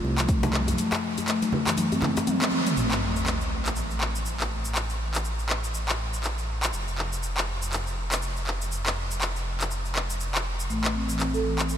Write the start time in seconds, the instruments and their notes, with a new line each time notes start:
0.04 detuned saw bass C2, marimba A3, muted conga
0.18 marimba F3, clap, closed hi-hat, shaker
0.29 marimba A3, kick, closed hi-hat, muted conga, shaker
0.43 closed hi-hat, djembe slap, high conga, djembe tone, low conga, shaker
0.53 clap, muted conga, high conga
0.68 marimba F3, closed hi-hat, djembe tone, high conga, shaker
0.78 marimba A3, closed hi-hat, high conga, shaker
0.92 clap, closed hi-hat, djembe slap, muted conga, shaker
1.17 closed hi-hat, muted conga, high conga, djembe tone, shaker
1.28 marimba A3, clap, closed hi-hat, shaker
1.42 marimba A3, closed hi-hat, muted conga, high conga, shaker
1.52 low conga
1.67 marimba E3, clap, closed hi-hat, muted conga, djembe tone, shaker
1.77 marimba A3, closed hi-hat, high conga, shaker
1.92 marimba C4, closed hi-hat, djembe tone, shaker
2.02 marimba A3, clap, high tom, djembe slap, muted conga, high conga, low conga
2.17 closed hi-hat, djembe slap, shaker
2.27 marimba C4, closed hi-hat, mid tom, muted conga, high conga, shaker
2.41 marimba F3, clap, closed hi-hat, mid tom, shaker
2.52 marimba C4, muted conga
2.66 marimba A3, closed hi-hat, mid tom, shaker
2.77 detuned saw bass A1, sub drop, shaker
2.91 clap, shaker
3.16 shaker
3.27 clap, shaker
3.41 shaker
3.66 clap, shaker
3.76 shaker
3.91 shaker
4.01 clap
4.15 shaker
4.26 shaker
4.40 clap, shaker
4.65 shaker
4.75 clap, shaker
4.90 shaker
5.14 clap, shaker
5.25 shaker
5.39 shaker
5.49 clap
5.64 shaker
5.74 shaker
5.89 clap, shaker
6.13 shaker
6.24 clap, shaker
6.38 shaker
6.63 clap, shaker
6.73 detuned saw bass F1, shaker
6.88 shaker
6.98 clap
7.13 shaker
7.23 shaker
7.37 clap, shaker
7.62 shaker
7.73 clap, shaker
7.87 shaker
8.12 clap, shaker
8.22 shaker
8.37 shaker
8.47 clap
8.62 shaker
8.72 shaker
8.86 clap, shaker
9.11 shaker
9.21 clap, shaker
9.36 shaker
9.61 clap, shaker
9.71 shaker
9.85 shaker
9.96 clap
10.10 shaker
10.20 shaker
10.35 clap, shaker
10.60 shaker
10.70 detuned saw bass A1, marimba A3, shaker
10.84 clap, shaker
10.95 marimba C4
11.09 marimba E3, shaker
11.19 marimba C4, clap, shaker
11.34 marimba A4, shaker
11.44 marimba E3
11.59 clap, shaker
11.69 shaker